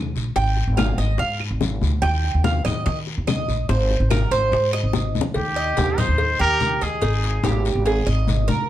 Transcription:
Already playing: D#2
0.15 A#1, high bongo, short guiro
0.36 G#1 G5, high bongo, long guiro
0.57 high bongo, high conga
0.68 G#1
0.77 F5, high bongo, high conga, short guiro, claves
0.98 G#1 D#5, high conga, short guiro
1.18 G#2 F5, high bongo, high conga, long guiro
1.40 high bongo, high conga, claves
1.51 G#1
1.61 high bongo, low bongo, high conga, short guiro
1.81 D2, high bongo, high conga, short guiro
2.02 D#2 G5, high bongo, high conga, long guiro, claves
2.23 high bongo, high conga
2.34 D#2
2.44 F5, high bongo, high conga, short guiro
2.65 D#2 D#5, low conga, short guiro, claves
2.86 D#3 D#5, high bongo, high conga, long guiro
3.07 high bongo, high conga
3.18 D#2
3.27 D#5, high bongo, low bongo, high conga, short guiro, claves
3.48 A#1, high bongo, short guiro
3.69 G#1 C5, high bongo, high conga, long guiro
3.91 high bongo, high conga
4.00 G#1
4.10 A#4, high bongo, high conga, short guiro, claves
4.31 G#1 C5, high conga, short guiro
4.52 G#2, high bongo, high conga, long guiro
4.73 D#5, high bongo, high conga, claves
4.83 G#1
4.93 high bongo, high conga, short guiro
5.15 D#2, high conga, short guiro
5.21 low bongo
5.34 D#2 G4, cowbell, high conga, long guiro
5.56 D#5, high conga
5.77 D#2 G4, cowbell, high conga, short guiro
5.98 D#4 C5, low conga, short guiro
6.08 D#2
6.18 cowbell, high conga, long guiro
6.39 D#2 G4 A#4, high conga
6.60 cowbell, high conga, short guiro
6.81 D#2 G#4 D#5, cowbell, short guiro
7.01 G#1 D#4, cowbell, long guiro
7.24 cowbell, high conga
7.44 G#1 G4, cowbell, high conga, short guiro
7.65 cowbell, high conga, short guiro
7.75 G#1
7.86 G#4, cowbell, high conga, long guiro
8.07 G#1 D#5, high conga
8.28 cowbell, high conga, short guiro
8.48 G#2 A#4, high conga, short guiro

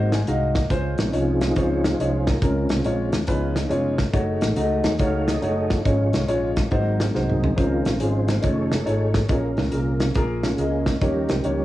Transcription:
Already playing: G#1 G#2 G#3 A#3 C4 D#4 F#4 C5
0.12 G#5, snare, closed hi-hat
0.27 C2 G#3 D#4 F#4 D#5 F5, closed hi-hat
0.55 kick, snare, closed hi-hat
0.70 C#2 C#3 G#3 C#4 F4 C5, kick, closed hi-hat
0.98 A#1 F3 C4 D#4, snare, closed hi-hat
1.13 C2 G#3 C4 C#4 F4 G#4 C#5, closed hi-hat
1.41 snare, closed hi-hat
1.56 C#2 G#3 C#4 F4 G#4 C5 C#5, kick, closed hi-hat
1.84 F4 G#4 C5, snare, closed hi-hat
1.99 C2 G#3 C#4 F4 C#5, closed hi-hat
2.27 F4 A#4, kick, snare, closed hi-hat
2.42 C#2 C#3 G#3 C4 C#4 F4 A#4, kick, closed hi-hat
2.69 C2, snare, closed hi-hat
2.84 A#1 G#3 C#4 F4 C#5, closed hi-hat
3.12 D#2, snare, closed hi-hat
3.27 C#2 C#3 F3 G#3 B3 C#4 D#4 F4 B4, kick, closed hi-hat
3.56 snare, closed hi-hat
3.69 F1 G#3 C#4 F4 C#5, closed hi-hat
3.98 kick, snare, closed hi-hat
4.13 F#1 A3 D#4 F#4 G#4 C#5, kick, closed hi-hat
4.41 A1, snare, closed hi-hat
4.56 C#2 A3 D#4 F#4 D#5, closed hi-hat
4.84 D#2 C#5, snare, closed hi-hat
4.98 C#2 A3 D#4 F#4 A4 C#5 F5, kick, closed hi-hat
5.27 A4 D#5, snare, closed hi-hat
5.42 F#1 A3 D#4 F#4 C#5, closed hi-hat
5.68 F4 G#4 C#5, kick, snare, closed hi-hat
5.85 G#1 G#2 F3 G#3 C#4 F4 C#5, kick, closed hi-hat
6.13 C2, snare, closed hi-hat
6.28 A#1 G#3 C#4 F4 C#5, closed hi-hat
6.56 kick, snare, closed hi-hat
6.71 G#1 G#2 F#3 G#3 A#3 C4 D#4 F#4 C5, kick, closed hi-hat
7.00 C4 D#4 G#4, snare, closed hi-hat
7.14 C2 G#3 D#4 F#4 C5, snare
7.30 mid tom
7.44 floor tom
7.56 C#2 C#3 D#3 F3 G#3 C4 C#4 F4 A#4 C5, kick, closed hi-hat
7.85 A#1, snare, closed hi-hat
7.97 G#1 G#3 C#4 F4 G#4 C#5, closed hi-hat
8.02 F4 G#4 C5
8.28 snare, closed hi-hat
8.42 F1 D#3 A3 C#4 D#4 F4 G#4 A4 C#5, kick, closed hi-hat
8.72 snare, closed hi-hat
8.85 G#1 A3 D#4 F4 C#5, closed hi-hat
9.14 kick, snare, closed hi-hat
9.29 A#1 A#2 A#3 C#4 F4 G#4 A#4 C#5, kick, closed hi-hat
9.57 C#2, snare, closed hi-hat
9.71 C2 A#3 F4 G#4 A#4, closed hi-hat
10.00 C#3 G#3 C4, snare, closed hi-hat
10.14 A#1 A#3 F4 G#4 A#4, kick, closed hi-hat
10.43 C#4 F4 G#4, snare, closed hi-hat
10.58 C#2 A#3 F4 G#4 D#5, closed hi-hat
10.86 kick, snare, closed hi-hat
11.01 D#2 D#3 F3 G3 A#3 C#4 D#4 G4 A#4 C#5, kick, closed hi-hat
11.28 C2 C5, snare, closed hi-hat
11.44 C#2 A#3 D#4 G4 C#5, closed hi-hat

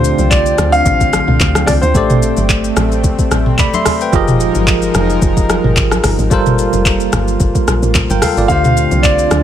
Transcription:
Already playing: D2 D3 A3 C4 D4 F4 G4 C5 G5
0.04 shaker
0.18 C2, high conga, shaker
0.30 D5, kick, clap, shaker
0.46 shaker
0.58 D2, cross-stick, high conga, shaker
0.72 F5, shaker
0.86 A1, kick, low conga, shaker
1.01 kick, shaker
1.13 cross-stick, high conga, shaker
1.28 C2, mid tom
1.40 D2, kick, clap, low conga, shaker
1.55 cross-stick, high conga, shaker
1.66 C2 D5, cross-stick, open hi-hat, high conga, low conga, shaker
1.81 D2 C5, shaker
1.94 A1 A3 C4 G4 A4 C5 D5, kick, shaker
2.10 mid tom, shaker
2.22 shaker
2.37 G1, high conga, shaker
2.49 kick, clap, shaker
2.64 shaker
2.76 A1, cross-stick, high conga, shaker
2.92 shaker
3.04 kick, low conga, shaker
3.19 kick, shaker
3.31 A1, cross-stick, high conga, shaker
3.46 mid tom
3.59 D5 B5, kick, clap, low conga, shaker
3.74 E5 C6, high conga, shaker
3.86 cross-stick, open hi-hat, high conga, low conga, shaker
4.01 B4 G5, shaker
4.12 F1 F3 G#3 D#4 F4 G4 G#4 A#4 D#5, kick, shaker
4.28 mid tom, shaker
4.40 shaker
4.55 G1, high conga, shaker
4.67 kick, clap, shaker
4.82 shaker
4.94 F1, cross-stick, high conga, shaker
5.10 shaker
5.22 F1, kick, low conga, shaker
5.37 kick, shaker
5.49 cross-stick, high conga, shaker
5.64 G1, mid tom
5.77 G#1, kick, clap, low conga, shaker
5.91 cross-stick, high conga, shaker
6.04 G1, cross-stick, open hi-hat, high conga, low conga, shaker
6.19 G#1, shaker
6.30 G1 G3 A#3 F4 A4 A#4 C5, kick, shaker
6.46 mid tom, shaker
6.59 shaker
6.73 F1, high conga, shaker
6.85 kick, clap, shaker
7.00 shaker
7.13 G1, cross-stick, high conga, low conga, shaker
7.28 shaker
7.40 G1, kick, low conga, shaker
7.55 kick, shaker
7.68 A#1, cross-stick, high conga, shaker
7.83 A1, shaker
7.95 A1, kick, clap, low conga, shaker
8.10 G1 A#4 G5, high conga, shaker
8.22 A4 F5, cross-stick, open hi-hat, high conga, low conga, shaker
8.37 G1 F4 D5, shaker
8.48 D2 D3 A3 C4 D4 F4 G4 C5 F5 G5, kick, shaker
8.64 mid tom, shaker
8.77 shaker
8.91 C2, high conga, shaker
9.03 D5, kick, clap, shaker
9.19 shaker
9.31 D2, cross-stick, high conga, shaker

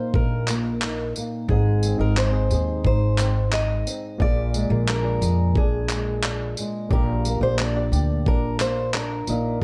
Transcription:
Already playing: A#2 A#3 D#4 F4 A#4 C5 D#5
0.14 A#1 D#4 A#4, kick
0.48 A#3, clap, tambourine
0.82 D#4, clap
1.16 A#3, tambourine
1.48 G#1 G#2 C4 D#4 G#4 D#5, kick
1.83 C4, tambourine
1.97 G#1 C4 D#4 G#4 A#4 D#5
2.17 D#4 C5, clap
2.32 C4 D#4 G#4 D#5
2.50 D#2 G#4, tambourine
2.84 G#1 D#4 C5, kick
3.18 C4, clap, tambourine
3.52 D#4 D#5, clap
3.87 C4, tambourine
4.18 A#1 A#2 A#3 F4 G#4 D5, kick
4.54 G#3, tambourine
4.69 A#1 A#3 F4 G#4 A#4
4.88 D4 A#4, clap
5.02 A#3 F4 G#4 D5
5.21 F2 G#4, tambourine
5.55 A#1 D4 G#4, kick
5.89 G#3, clap, tambourine
6.23 D4, clap
6.57 G#3, tambourine
6.89 A#1 A#2 A#3 D4 G4 A#4 D5, kick
7.25 A#3, tambourine
7.41 A#1 A#3 D4 G4 C5 D5
7.59 D4 D5, clap
7.75 A#3 D4 G4 D5
7.92 D2 G4, tambourine
8.26 A#1 D4 A#4, kick
8.60 A#3 C5, clap, tambourine
8.94 D4 A#4, clap
9.27 A#1 A#2 A#3 D#4 F4 D#5, tambourine

